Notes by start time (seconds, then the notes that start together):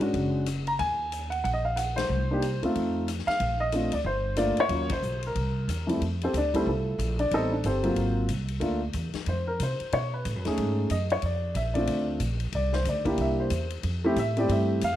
Already playing: A#4
0.00 G#1 G#3 C#4 D4 F#4, ride
0.14 F#1, kick, ride
0.46 cross-stick, hi-hat pedal, ride
0.67 A#5, ride
0.79 D#2 G#5, kick, ride
1.12 hi-hat pedal, ride
1.30 F#5, ride
1.44 A#1 F#5, kick, ride
1.53 D#5
1.65 F5
1.76 F#5, cross-stick, hi-hat pedal, ride
1.96 C5, snare, ride
2.09 C2
2.31 A#3 D4 D#4 G4
2.42 hi-hat pedal, ride
2.63 D#2 A3 C4 D#4 F4, ride
2.75 F2, kick, ride
3.08 cross-stick, hi-hat pedal, ride
3.19 snare
3.27 F5, muted upright bass stroke, snare, ride
3.40 A#1, kick, ride
3.60 D#5
3.72 A3 C4 D4 F4, hi-hat pedal, ride
3.92 D2 D5, ride
4.04 G1 C5, kick
4.36 A3 A#3 D4 F4 D5, cross-stick, hi-hat pedal, ride
4.57 C#5, muted upright bass stroke, ride
4.69 D#2 F#3 A#3 C#4 F4, kick, ride
4.89 C5, kick, ride
5.02 B1, hi-hat pedal
5.23 ride
5.27 A#4
5.35 C2, kick, ride
5.68 E2, cross-stick, hi-hat pedal, ride
5.87 F2 G3 A3 C4 E4, ride
6.01 F2, kick, ride
6.21 C4 G4 A4 C5, ride
6.33 D2 D5, kick, hi-hat pedal, ride
6.38 D4
6.54 G3 A3 C4 E4 G4 A4 C5, kick, ride
6.66 C2 A3 E4 F4 A4, kick
6.99 A#1, kick, hi-hat pedal, ride
7.19 D4 D5, ride
7.31 A1 G3 B3 C4 D#4 A4 C5 D#5, kick, ride
7.52 D4 D5
7.64 G1 C4 G4 A4 C5, kick, hi-hat pedal, ride
7.83 F#3 A#3 C4 F4, ride
7.96 G#1, kick, ride
8.29 C2, kick, hi-hat pedal, ride
8.48 ride
8.60 D2 A3 A#3 D4 F4, kick, ride
8.93 E2, kick, hi-hat pedal, ride
9.13 muted upright bass stroke, snare, ride
9.26 F2 C5, kick, ride
9.47 A#4
9.60 C3 C5, kick, hi-hat pedal, ride
9.80 muted upright bass stroke, ride
9.92 B2 C#5, kick, ride
10.14 B4
10.25 A2, kick, hi-hat pedal, ride
10.36 F#2
10.45 D#2 A3 C#4 D#4 G#4, snare, ride
10.57 G#2, kick, ride
10.90 F#2 D#5, kick, hi-hat pedal, ride
11.10 C#5, ride
11.22 F2 D5, kick, ride
11.55 A#1 E5, kick, hi-hat pedal, ride
11.74 A3 C4 D4 F4 D5, kick, ride
11.87 D2, kick, ride
12.20 A#1, kick, hi-hat pedal, ride
12.40 ride
12.52 C2 D5, kick, ride
12.73 C5, snare
12.85 D2 D5, kick, hi-hat pedal, ride
13.05 A#3 D4 E4 G4, kick, ride
13.18 C2 E5, kick, ride
13.40 C5
13.50 E2, kick, hi-hat pedal, ride
13.70 ride
13.83 F2, kick, ride
14.04 A3 C4 E4 G4
14.16 A2 E5, kick, hi-hat pedal, ride
14.37 A3 C4 E4 G4 D5, ride
14.49 G2 E5, kick, ride
14.81 F2 F5, kick, hi-hat pedal, ride
14.92 E2